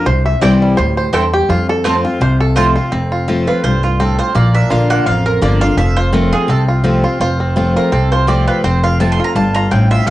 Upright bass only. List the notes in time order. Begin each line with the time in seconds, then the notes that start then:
0.06 C2
0.42 C2
0.78 D2
1.13 E2
1.49 F2
2.20 C2
2.92 F1
3.64 C2
4.35 A#1
4.70 A#1
5.06 A1
5.42 G1
5.77 F1
6.48 C2
7.20 F1
7.92 C2
8.64 F1
9.35 G1
9.72 A1
10.07 A#1